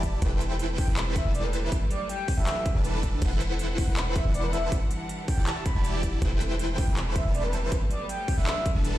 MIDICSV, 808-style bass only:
0, 0, Header, 1, 2, 480
1, 0, Start_track
1, 0, Tempo, 375000
1, 280, Time_signature, 4, 2, 24, 8
1, 11494, End_track
2, 0, Start_track
2, 0, Title_t, "808-style bass"
2, 0, Program_c, 0, 38
2, 0, Note_on_c, 0, 28, 97
2, 258, Note_off_c, 0, 28, 0
2, 283, Note_on_c, 0, 28, 96
2, 1098, Note_off_c, 0, 28, 0
2, 1124, Note_on_c, 0, 28, 97
2, 1578, Note_off_c, 0, 28, 0
2, 1602, Note_on_c, 0, 28, 98
2, 2163, Note_off_c, 0, 28, 0
2, 3042, Note_on_c, 0, 28, 92
2, 3190, Note_off_c, 0, 28, 0
2, 3522, Note_on_c, 0, 28, 100
2, 4097, Note_off_c, 0, 28, 0
2, 4121, Note_on_c, 0, 28, 96
2, 4938, Note_off_c, 0, 28, 0
2, 4960, Note_on_c, 0, 28, 99
2, 5417, Note_off_c, 0, 28, 0
2, 5442, Note_on_c, 0, 28, 99
2, 6003, Note_off_c, 0, 28, 0
2, 6881, Note_on_c, 0, 28, 95
2, 7029, Note_off_c, 0, 28, 0
2, 7360, Note_on_c, 0, 28, 101
2, 7936, Note_off_c, 0, 28, 0
2, 7960, Note_on_c, 0, 28, 101
2, 8777, Note_off_c, 0, 28, 0
2, 8800, Note_on_c, 0, 28, 92
2, 9257, Note_off_c, 0, 28, 0
2, 9281, Note_on_c, 0, 28, 99
2, 9842, Note_off_c, 0, 28, 0
2, 10721, Note_on_c, 0, 28, 95
2, 10870, Note_off_c, 0, 28, 0
2, 11199, Note_on_c, 0, 28, 103
2, 11494, Note_off_c, 0, 28, 0
2, 11494, End_track
0, 0, End_of_file